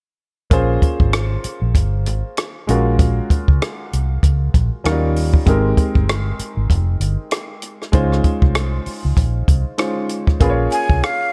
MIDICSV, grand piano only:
0, 0, Header, 1, 2, 480
1, 0, Start_track
1, 0, Tempo, 619195
1, 395, Time_signature, 4, 2, 24, 8
1, 8781, End_track
2, 0, Start_track
2, 0, Title_t, "Grand piano"
2, 0, Program_c, 0, 0
2, 390, Note_on_c, 0, 58, 62
2, 399, Note_on_c, 0, 61, 61
2, 404, Note_on_c, 0, 65, 64
2, 410, Note_on_c, 0, 68, 61
2, 415, Note_on_c, 0, 72, 75
2, 534, Control_c, 0, 64, 127
2, 2042, Note_off_c, 0, 58, 0
2, 2046, Note_off_c, 0, 61, 0
2, 2049, Note_off_c, 0, 65, 0
2, 2051, Note_off_c, 0, 68, 0
2, 2054, Note_off_c, 0, 72, 0
2, 2072, Note_on_c, 0, 56, 62
2, 2080, Note_on_c, 0, 61, 55
2, 2084, Control_c, 0, 64, 0
2, 2085, Note_on_c, 0, 65, 56
2, 2090, Note_on_c, 0, 66, 58
2, 2096, Note_on_c, 0, 70, 69
2, 2226, Control_c, 0, 64, 127
2, 3722, Note_off_c, 0, 56, 0
2, 3726, Note_off_c, 0, 61, 0
2, 3729, Note_off_c, 0, 65, 0
2, 3731, Note_off_c, 0, 66, 0
2, 3734, Note_off_c, 0, 70, 0
2, 3753, Note_on_c, 0, 54, 55
2, 3755, Note_on_c, 0, 61, 58
2, 3763, Control_c, 0, 64, 0
2, 3763, Note_on_c, 0, 63, 63
2, 3763, Note_on_c, 0, 65, 63
2, 3765, Note_on_c, 0, 70, 75
2, 3804, Note_on_c, 0, 55, 69
2, 3812, Note_off_c, 0, 54, 0
2, 3901, Control_c, 0, 64, 127
2, 4231, Note_off_c, 0, 63, 0
2, 4231, Note_on_c, 0, 56, 72
2, 4235, Note_off_c, 0, 61, 0
2, 4236, Note_on_c, 0, 60, 63
2, 4239, Note_off_c, 0, 65, 0
2, 4240, Note_off_c, 0, 70, 0
2, 4243, Note_on_c, 0, 63, 65
2, 4245, Control_c, 0, 64, 0
2, 4245, Note_on_c, 0, 67, 66
2, 4254, Note_on_c, 0, 70, 79
2, 4259, Note_off_c, 0, 55, 0
2, 4374, Control_c, 0, 64, 127
2, 6121, Note_off_c, 0, 56, 0
2, 6123, Note_off_c, 0, 60, 0
2, 6127, Note_off_c, 0, 63, 0
2, 6128, Note_off_c, 0, 67, 0
2, 6133, Note_off_c, 0, 70, 0
2, 6140, Note_on_c, 0, 56, 72
2, 6146, Note_on_c, 0, 61, 61
2, 6148, Note_on_c, 0, 63, 62
2, 6156, Note_on_c, 0, 65, 62
2, 6159, Note_on_c, 0, 72, 70
2, 6163, Control_c, 0, 64, 0
2, 6299, Control_c, 0, 64, 127
2, 7558, Note_off_c, 0, 56, 0
2, 7560, Note_off_c, 0, 61, 0
2, 7561, Note_off_c, 0, 63, 0
2, 7566, Note_off_c, 0, 65, 0
2, 7567, Note_off_c, 0, 72, 0
2, 7581, Note_on_c, 0, 56, 51
2, 7582, Note_on_c, 0, 63, 43
2, 7583, Note_on_c, 0, 61, 43
2, 7587, Note_on_c, 0, 65, 46
2, 7592, Note_on_c, 0, 72, 53
2, 8053, Note_off_c, 0, 61, 0
2, 8062, Note_off_c, 0, 65, 0
2, 8062, Note_on_c, 0, 58, 69
2, 8064, Note_on_c, 0, 61, 65
2, 8067, Note_off_c, 0, 56, 0
2, 8068, Note_off_c, 0, 63, 0
2, 8073, Note_off_c, 0, 72, 0
2, 8074, Note_on_c, 0, 65, 64
2, 8075, Note_on_c, 0, 68, 66
2, 8083, Note_on_c, 0, 71, 60
2, 8084, Control_c, 0, 64, 0
2, 8137, Note_off_c, 0, 71, 0
2, 8137, Note_on_c, 0, 73, 71
2, 8239, Control_c, 0, 64, 127
2, 8781, Note_off_c, 0, 58, 0
2, 8781, Note_off_c, 0, 61, 0
2, 8781, Note_off_c, 0, 65, 0
2, 8781, Note_off_c, 0, 68, 0
2, 8781, Note_off_c, 0, 73, 0
2, 8781, End_track
0, 0, End_of_file